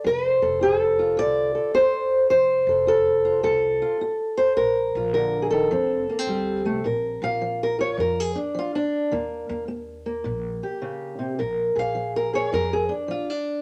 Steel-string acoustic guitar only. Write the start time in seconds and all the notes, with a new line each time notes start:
Already playing: A4
0.04 F3 B4
0.26 C5
0.42 A4
0.61 F4 A4
0.81 B4
0.93 A#4
0.99 F4
1.17 C3 D5
1.55 A4
1.74 F4 C5
2.30 F3 C5
2.69 A4
2.87 F4 A4
3.25 F4
3.43 C3 A4
3.82 F4
4.01 F4
4.37 C5
4.57 A#2 A#4
4.97 F4
5.14 D3 A#4
5.42 G#4
5.50 D#3 A4
5.71 F3 C4
6.09 A#3
6.19 C4
6.28 G3
6.66 A3
6.85 A#2 A#4
7.23 F4 F5
7.41 F3
7.63 A#4
7.79 F4 C#5
7.97 F3 A#4
8.20 G#4
8.35 D4
8.54 F3
8.59 F4
8.75 D4
9.11 D#3 A#3
9.49 A#3
9.68 A#3
10.06 A#3
10.24 A#2
10.63 G4
10.82 C#3
11.19 C3
11.39 A#2 A#4
11.75 G#4 F5
11.95 F3
12.16 A#4
12.33 G#4 C#5
12.52 F3 A#4
12.73 G#4
12.89 D4
13.08 F3 F4
13.30 D4